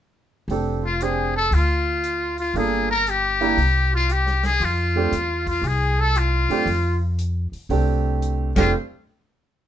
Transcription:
0.48 upright bass F1, grand piano C4 D4 G4 A4, open hi-hat
0.84 trumpet F4, muted trumpet F4
1.01 grand piano C4 D4 G4 C5, trumpet G#4, muted trumpet G#4, closed hi-hat
1.36 trumpet A4, muted trumpet A4
1.51 upright bass D2, trumpet F4, muted trumpet F4, open hi-hat
2.04 closed hi-hat
2.38 trumpet F4, muted trumpet F4, open hi-hat
2.54 upright bass G1, grand piano A#3 D4 F4 A4, trumpet G#4, open hi-hat
2.58 muted trumpet G#4
2.90 trumpet A#4, muted trumpet A#4
3.07 trumpet G4, muted trumpet G4, closed hi-hat
3.41 grand piano A#3 D4 E4 G4, open hi-hat
3.57 upright bass C2, open hi-hat
3.94 trumpet F4, muted trumpet F4
4.09 trumpet G4, muted trumpet G4, closed hi-hat
4.26 snare
4.43 trumpet G#4, muted trumpet G#4, snare, open hi-hat
4.60 upright bass F2, trumpet F4, open hi-hat
4.65 muted trumpet F4
4.96 grand piano A3 C4 D4 G4
5.12 upright bass E2, closed hi-hat
5.47 trumpet F4, muted trumpet F4, kick, open hi-hat
5.62 upright bass C2, trumpet G#4, open hi-hat
5.68 muted trumpet G#4
5.99 trumpet A4, muted trumpet A4
6.15 trumpet F4, muted trumpet F4, closed hi-hat
6.49 upright bass F#2, grand piano A3 C4 D4 G4, open hi-hat
6.66 upright bass F2, open hi-hat
7.19 closed hi-hat
7.52 muted upright bass stroke, open hi-hat
7.69 upright bass C2, grand piano A3 C4 D4 G4, open hi-hat
8.22 closed hi-hat
8.56 upright bass F1, grand piano A3 C4 D4 G4, muted trumpet F4, trumpet F5, kick, snare, crash

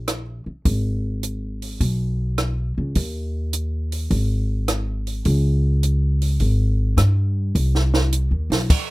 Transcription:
Already playing: upright bass A#1
0.08 cross-stick, closed hi-hat
0.46 muted upright bass stroke
0.65 upright bass G#1, kick, open hi-hat
1.23 closed hi-hat
1.62 open hi-hat
1.80 upright bass B1, kick, open hi-hat
2.38 cross-stick, closed hi-hat
2.78 upright bass C#2
2.95 upright bass D#2, kick, open hi-hat
3.53 closed hi-hat
3.92 open hi-hat
4.11 upright bass G#1, kick, open hi-hat
4.68 cross-stick, closed hi-hat
5.07 open hi-hat
5.25 upright bass C#2, kick, open hi-hat
5.83 closed hi-hat
6.22 open hi-hat
6.40 upright bass G#1, kick, open hi-hat
6.97 upright bass G2, cross-stick, closed hi-hat
7.55 upright bass C2, kick, open hi-hat
7.75 snare
7.94 snare
8.12 closed hi-hat
8.31 upright bass D#2
8.50 upright bass B1, snare, open hi-hat
8.70 kick, open hi-hat, crash

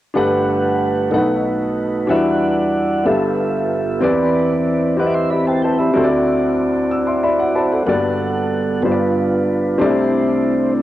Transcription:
0.14 upright piano G1 G2 D4 G4 A4 B4 F#5, tonewheel organ A3 G4 B4 F#5
1.10 upright piano B1 B2 D4 F#4 A4 B4 F#5, tonewheel organ A3 D#4 F#4 A#4
1.17 upright piano D#4, tonewheel organ B4
2.07 upright piano E2 E3 D4 F#4 G4 B4 E5, tonewheel organ G3 E4 C#5 F#5
2.16 tonewheel organ D5
3.04 upright piano G1 G2 B3 F4 G4 A4 E5, tonewheel organ A3 F4 G4 A4 E5
3.13 tonewheel organ B3
4.01 upright piano E2 E3 C4 E4 G4 B4 D5, tonewheel organ E3 C4 E4 B4 D5
4.97 upright piano C4 E4 G4 B4 D#5, tonewheel organ F#5 D6
5.06 upright piano E5
5.14 tonewheel organ E5 C6
5.30 upright piano G4 E5, tonewheel organ D5 B5
5.47 upright piano B4 G5, tonewheel organ C5 A5
5.62 tonewheel organ B4 G5, upright piano C5 A5
5.79 tonewheel organ G4 E5, upright piano D5 B5
5.93 upright piano D2 D3 C4 E4 F#4 A4 C5, tonewheel organ C4 E4 F#4 D5
6.04 upright piano D5
6.91 upright piano E6
7.07 upright piano E5 C6
7.23 upright piano D5 E5 B5
7.39 upright piano F#5
7.55 upright piano C5 A5 B5
7.72 upright piano A4 F#5
7.86 upright piano G1 G2 A#3 F#4 G4 A4 D5, tonewheel organ G3 B3 A4 F#5
7.92 upright piano B3
8.82 upright piano G1 G2 B3 D4 F4 G4 C5, tonewheel organ G3 D4 F4 B4
8.91 upright piano D5
9.78 upright piano C2 C3 C4 D4 G4 A4 D5, tonewheel organ A3 D4 E4 C5
9.86 upright piano E4

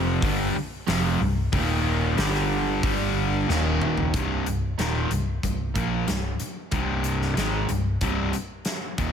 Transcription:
Already playing: fingered electric bass F1, overdriven electric guitar F2 C3 F3
0.22 fingered electric bass G1, overdriven electric guitar G2 D3 G3, kick, open hi-hat
0.56 muted overdriven electric guitar stroke
0.88 fingered electric bass F1, overdriven electric guitar F2 C3 F3, snare, open hi-hat
1.20 fingered electric bass C1, overdriven electric guitar C2 G2
1.52 fingered electric bass D#1, overdriven electric guitar D#2 A#2 D#3, kick, open hi-hat
2.17 fingered electric bass G1, overdriven electric guitar G2 D3 G3, snare, open hi-hat
2.34 snare
2.83 fingered electric bass G1, overdriven electric guitar G2 D3 G3, kick, open hi-hat
3.48 fingered electric bass D#1, overdriven electric guitar D#2 A#2 D#3, snare
3.82 mid tom
3.98 floor tom
4.14 fingered electric bass C1, overdriven electric guitar C2 G2 C3, kick, closed hi-hat
4.46 fingered electric bass C1, overdriven electric guitar C2 G2, closed hi-hat
4.78 fingered electric bass D#1, overdriven electric guitar D#2 A#2 D#3, snare, closed hi-hat
5.11 fingered electric bass C1, overdriven electric guitar C2 G2, closed hi-hat
5.43 fingered electric bass C1, overdriven electric guitar C2 G2, kick, closed hi-hat
5.76 fingered electric bass A#1, overdriven electric guitar A#2 F3 A#3, kick, closed hi-hat
6.08 fingered electric bass C1, overdriven electric guitar C2 G2, snare, closed hi-hat
6.40 muted fingered electric bass stroke, muted overdriven electric guitar stroke, closed hi-hat
6.72 fingered electric bass C1, overdriven electric guitar C2 G2 C3, kick, closed hi-hat
7.04 closed hi-hat
7.22 snare
7.37 fingered electric bass G#1, overdriven electric guitar G#2 D#3 G#3, snare, closed hi-hat
7.69 fingered electric bass C1, overdriven electric guitar C2 G2, closed hi-hat
8.01 fingered electric bass C1, overdriven electric guitar C2 G2 C3, kick, closed hi-hat
8.33 closed hi-hat
8.65 snare, closed hi-hat
8.98 fingered electric bass D#1, overdriven electric guitar D#2 A#2 D#3, kick, closed hi-hat

